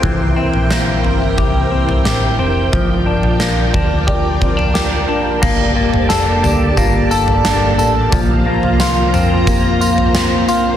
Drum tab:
CC |----------------|----------------|x---------------|----------------|
TB |----------------|----------------|x---x-x-x-x-x-x-|x---x-x-x-x-x-x-|
SD |----o-------o---|----o-------o---|----o-------o---|----o-------o---|
FT |o--o--o-o--o----|o--o--o----o----|o--o--o-o--o----|o--o--o----o----|
BD |o-------o-------|o-----o-o-o-----|o-------o-------|o-------o-------|